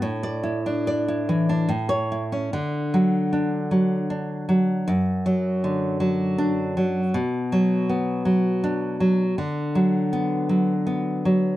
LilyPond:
\new Staff \with { instrumentName = "Nylon-string guitar" } { \clef bass \time 3/4 \key d \major \tempo 4 = 79 << { r16 d''8 r4. cis''8 r16 | r4 d'8. r4 r16 | r2 d'8. r16 | r2 d'8. r16 |
r4 b8. r4 r16 | } \\ { a,8 e'16 d'16 d''16 e'16 e16 d'16 a,8 e'16 cis'16 | d8 fis4 fis8 d'8 fis8 | fis,8 fis8 d8 fis4 fis8 | b,8 fis8 b8 fis4 fis8 |
d8 fis4 fis8 b8 fis8 | } >> }